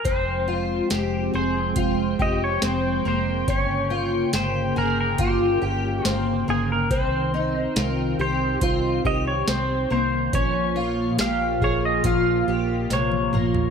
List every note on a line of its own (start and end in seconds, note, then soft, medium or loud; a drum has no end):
0.04 0.80 F1 loud
0.04 3.44 F3 medium
0.04 3.44 G#3 medium
0.04 3.44 C4 medium
0.04 0.48 C4 medium
0.04 1.31 C5 medium
0.04 10.29 G5 medium
0.04 kick loud
0.04 closed hi-hat medium
0.48 0.90 F4 medium
0.90 1.29 F1 medium
0.90 1.33 G4 medium
0.90 snare loud
0.90 closed hi-hat medium
1.34 1.72 F1 medium
1.34 1.76 G#4 medium
1.34 2.22 C5 medium
1.76 2.14 F1 medium
1.76 2.19 F4 medium
1.76 kick medium
1.76 closed hi-hat medium
2.19 2.57 F1 medium
2.19 2.62 G4 medium
2.19 2.43 D#5 medium
2.19 kick medium
2.44 2.64 C#5 medium
2.62 3.00 F1 medium
2.62 3.05 C4 medium
2.62 3.07 C5 medium
2.62 snare medium
2.62 closed hi-hat medium
3.05 3.43 F1 medium
3.05 3.48 A#3 medium
3.05 3.50 C5 medium
3.48 4.23 G1 medium
3.48 6.87 C#3 medium
3.48 6.87 A#3 medium
3.48 3.91 C#4 medium
3.48 4.35 C#5 medium
3.48 kick loud
3.48 closed hi-hat medium
3.90 4.33 F4 medium
4.33 4.71 G1 medium
4.33 4.76 G4 medium
4.33 4.78 C5 medium
4.33 snare loud
4.33 closed hi-hat medium
4.76 5.14 G1 medium
4.76 5.18 G#4 medium
4.76 4.99 A#4 medium
5.00 5.19 A#4 medium
5.18 5.57 G1 medium
5.18 5.61 F4 medium
5.18 6.05 G4 medium
5.18 kick medium
5.18 closed hi-hat medium
5.62 6.00 G1 medium
5.62 6.05 G4 medium
6.05 6.43 G1 medium
6.05 6.48 C4 medium
6.05 6.45 F4 medium
6.05 snare medium
6.05 closed hi-hat medium
6.48 6.86 G1 medium
6.48 6.91 A#3 medium
6.48 6.71 G#4 medium
6.72 6.93 A#4 medium
6.90 7.66 C2 medium
6.90 10.30 D#3 medium
6.90 10.30 C4 medium
6.90 7.33 C4 medium
6.90 7.82 C5 medium
6.90 kick loud
6.90 closed hi-hat medium
7.34 7.77 D#4 medium
7.76 8.14 C2 medium
7.76 8.19 F4 medium
7.76 snare loud
7.76 closed hi-hat medium
7.82 8.20 A#4 medium
8.19 8.57 C2 medium
8.19 8.62 G4 medium
8.19 9.06 C5 medium
8.61 8.99 C2 loud
8.61 9.05 F4 medium
8.61 kick medium
8.61 closed hi-hat medium
9.05 9.43 C2 medium
9.05 9.48 G4 medium
9.05 9.27 D#5 medium
9.05 kick medium
9.28 9.49 C#5 medium
9.48 9.85 C2 medium
9.48 9.91 C4 medium
9.48 9.91 C5 medium
9.48 snare loud
9.48 closed hi-hat medium
9.90 10.29 C2 medium
9.90 10.33 A#3 medium
9.90 10.35 C5 medium
10.33 11.09 A#1 loud
10.33 13.70 A#2 medium
10.33 13.70 F3 medium
10.33 13.70 A#3 medium
10.33 10.76 C#4 medium
10.33 13.70 F4 medium
10.33 11.20 C#5 medium
10.33 kick loud
10.33 closed hi-hat medium
10.76 11.18 F4 medium
11.19 11.57 A#1 medium
11.19 11.62 G4 medium
11.19 11.64 F5 medium
11.19 snare loud
11.19 closed hi-hat medium
11.62 12.00 A#1 medium
11.62 12.04 G#4 medium
11.62 11.83 C#5 medium
11.62 kick medium
11.85 12.06 D#5 medium
12.04 12.42 A#1 medium
12.04 12.47 F4 medium
12.04 13.30 F5 medium
12.04 kick medium
12.04 closed hi-hat medium
12.48 12.85 A#1 medium
12.48 12.91 G4 medium
12.90 13.28 A#1 medium
12.90 13.33 C3 medium
12.90 13.70 C#5 medium
12.90 snare medium
12.90 closed hi-hat medium
13.12 high tom medium
13.33 13.70 A#1 medium
13.33 13.70 A#3 medium
13.33 mid tom medium
13.54 floor tom medium